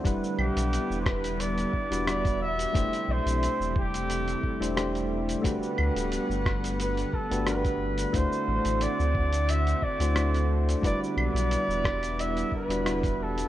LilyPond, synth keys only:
\new Staff \with { instrumentName = "Synth keys" } { \time 4/4 \key e \minor \tempo 4 = 89 <g d' e' b' fis''>2~ <g d' e' b' fis''>8. <g d' e' fis' b'>16 <g d' e' fis' b'>4 | <a d' e' g' c''>2~ <a d' e' g' c''>8. <a d' e' g' c''>16 <a d' e' g' c''>4 | <a d' fis' g' b'>2~ <a d' fis' g' b'>8. <a d' fis' g' b'>16 <a d' fis' g' b'>4 | <a d' e' fis' c''>2~ <a d' e' fis' c''>8. <a d' e' fis' c''>16 <a d' e' fis' c''>4 |
<g d' e' fis' b'>2~ <g d' e' fis' b'>8. <g d' e' fis' b'>16 <g d' e' fis' b'>4 | }